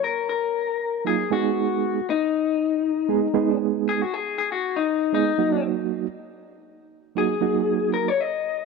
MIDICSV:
0, 0, Header, 1, 3, 480
1, 0, Start_track
1, 0, Key_signature, -6, "minor"
1, 0, Tempo, 509338
1, 1234, Time_signature, 4, 2, 24, 8
1, 8152, End_track
2, 0, Start_track
2, 0, Title_t, "Clean electric guitar"
2, 0, Program_c, 0, 27
2, 38, Note_on_c, 0, 70, 82
2, 265, Note_off_c, 0, 70, 0
2, 277, Note_on_c, 0, 70, 89
2, 974, Note_off_c, 0, 70, 0
2, 1008, Note_on_c, 0, 68, 91
2, 1234, Note_off_c, 0, 68, 0
2, 1250, Note_on_c, 0, 66, 86
2, 1942, Note_off_c, 0, 66, 0
2, 1979, Note_on_c, 0, 63, 88
2, 3370, Note_off_c, 0, 63, 0
2, 3665, Note_on_c, 0, 68, 91
2, 3787, Note_off_c, 0, 68, 0
2, 3787, Note_on_c, 0, 66, 85
2, 3899, Note_off_c, 0, 66, 0
2, 3899, Note_on_c, 0, 68, 79
2, 4120, Note_off_c, 0, 68, 0
2, 4132, Note_on_c, 0, 68, 86
2, 4244, Note_off_c, 0, 68, 0
2, 4260, Note_on_c, 0, 66, 79
2, 4482, Note_off_c, 0, 66, 0
2, 4490, Note_on_c, 0, 63, 78
2, 4830, Note_off_c, 0, 63, 0
2, 4848, Note_on_c, 0, 63, 99
2, 5307, Note_off_c, 0, 63, 0
2, 6766, Note_on_c, 0, 68, 97
2, 7456, Note_off_c, 0, 68, 0
2, 7479, Note_on_c, 0, 70, 85
2, 7616, Note_off_c, 0, 70, 0
2, 7616, Note_on_c, 0, 73, 92
2, 7733, Note_off_c, 0, 73, 0
2, 7733, Note_on_c, 0, 75, 87
2, 8152, Note_off_c, 0, 75, 0
2, 8152, End_track
3, 0, Start_track
3, 0, Title_t, "Reed electric piano"
3, 0, Program_c, 1, 4
3, 988, Note_on_c, 1, 54, 68
3, 992, Note_on_c, 1, 58, 63
3, 997, Note_on_c, 1, 63, 63
3, 998, Note_on_c, 1, 65, 74
3, 1152, Note_off_c, 1, 54, 0
3, 1154, Note_off_c, 1, 58, 0
3, 1156, Note_off_c, 1, 63, 0
3, 1157, Note_off_c, 1, 65, 0
3, 1229, Note_on_c, 1, 56, 71
3, 1235, Note_on_c, 1, 59, 67
3, 1237, Note_on_c, 1, 63, 64
3, 1240, Note_on_c, 1, 68, 82
3, 1869, Note_off_c, 1, 56, 0
3, 1872, Note_off_c, 1, 59, 0
3, 1873, Note_off_c, 1, 63, 0
3, 1874, Note_off_c, 1, 68, 0
3, 2909, Note_on_c, 1, 56, 83
3, 2911, Note_on_c, 1, 59, 72
3, 2915, Note_on_c, 1, 63, 74
3, 2919, Note_on_c, 1, 68, 90
3, 3073, Note_off_c, 1, 56, 0
3, 3074, Note_off_c, 1, 59, 0
3, 3076, Note_off_c, 1, 63, 0
3, 3078, Note_off_c, 1, 68, 0
3, 3145, Note_on_c, 1, 56, 90
3, 3149, Note_on_c, 1, 59, 85
3, 3151, Note_on_c, 1, 63, 80
3, 3153, Note_on_c, 1, 68, 93
3, 3787, Note_off_c, 1, 56, 0
3, 3789, Note_off_c, 1, 59, 0
3, 3790, Note_off_c, 1, 63, 0
3, 3791, Note_off_c, 1, 68, 0
3, 4831, Note_on_c, 1, 56, 72
3, 4837, Note_on_c, 1, 59, 67
3, 4840, Note_on_c, 1, 63, 69
3, 4842, Note_on_c, 1, 68, 81
3, 4994, Note_off_c, 1, 56, 0
3, 4997, Note_off_c, 1, 59, 0
3, 4998, Note_off_c, 1, 63, 0
3, 4999, Note_off_c, 1, 68, 0
3, 5071, Note_on_c, 1, 54, 74
3, 5073, Note_on_c, 1, 58, 72
3, 5076, Note_on_c, 1, 63, 67
3, 5078, Note_on_c, 1, 66, 86
3, 5708, Note_off_c, 1, 54, 0
3, 5710, Note_off_c, 1, 58, 0
3, 5711, Note_off_c, 1, 63, 0
3, 5712, Note_off_c, 1, 66, 0
3, 6744, Note_on_c, 1, 54, 67
3, 6745, Note_on_c, 1, 58, 64
3, 6750, Note_on_c, 1, 63, 68
3, 6753, Note_on_c, 1, 66, 79
3, 6908, Note_off_c, 1, 54, 0
3, 6909, Note_off_c, 1, 58, 0
3, 6911, Note_off_c, 1, 63, 0
3, 6913, Note_off_c, 1, 66, 0
3, 6982, Note_on_c, 1, 54, 77
3, 6986, Note_on_c, 1, 58, 69
3, 6989, Note_on_c, 1, 63, 69
3, 6993, Note_on_c, 1, 66, 85
3, 7622, Note_off_c, 1, 54, 0
3, 7623, Note_off_c, 1, 58, 0
3, 7625, Note_off_c, 1, 63, 0
3, 7627, Note_off_c, 1, 66, 0
3, 8152, End_track
0, 0, End_of_file